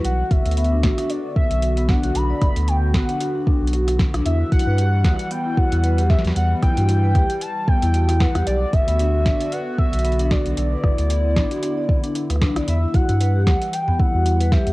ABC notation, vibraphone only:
X:1
M:4/4
L:1/16
Q:"Swing 16ths" 1/4=114
K:Bm
V:1 name="Vibraphone"
z4 B, D F D d z4 B, D F | D d z4 B, D F D D z F z2 D | E F E B G z3 B, E F E B G z2 | z B, E F E B G z3 B, E F E B G |
z3 B, D F D d B z3 B, D F D | d B z3 B, D F D d B, D z B D d | B, E F E B G z3 B, E F E B G z |]